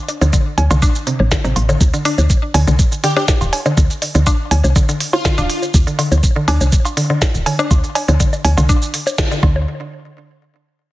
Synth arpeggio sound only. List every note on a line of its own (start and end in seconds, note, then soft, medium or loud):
0.21 0.25 D3 medium
0.33 0.36 D3 medium
0.71 0.75 D3 medium
0.82 0.85 D4 loud
1.07 1.10 C3 medium
1.32 1.36 D3 medium
1.44 1.47 C3 loud
1.69 1.73 D3 medium
1.94 1.98 D3 medium
2.05 2.08 D4 loud
2.54 2.59 D3 medium
2.67 2.70 D3 medium
3.04 3.08 D3 medium
3.17 3.19 D4 loud
3.66 3.70 D3 medium
3.77 3.80 D3 medium
4.15 4.19 D3 medium
4.27 4.29 D4 loud
4.76 4.80 D3 medium
4.89 4.91 D3 medium
5.25 5.29 D3 medium
5.38 5.40 D4 loud
5.87 5.91 D3 medium
5.99 6.01 D3 medium
6.36 6.40 D3 medium
6.48 6.51 D4 loud
6.97 7.01 D3 medium
7.10 7.12 D3 medium
7.46 7.51 D3 medium
7.59 7.62 D4 loud
8.08 8.12 D3 medium
8.20 8.23 D3 medium
8.57 8.62 D3 medium
8.69 8.72 D4 loud
9.18 9.23 D3 medium
9.31 9.34 D3 medium
9.43 9.66 D3 loud